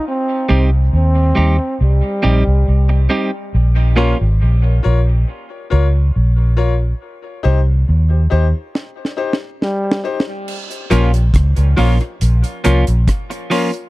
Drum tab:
CC |------------------------------------------------|------------------------------------------------|------------------------------------------------|x-----------------------------------------------|
HH |------------------------------------------------|------------------------------------------------|------------------------------------------------|---x--x--x--x--x--o--x--x--x--x--x--x--x--o--x--|
SD |------------------------------------------------|------------------------------------------------|------------------------o---o---o---o---o---o---|------------r-----------------------r-----------|
BD |------------------------------------------------|------------------------------------------------|------------------------------------------------|------------o-----------------------o-----------|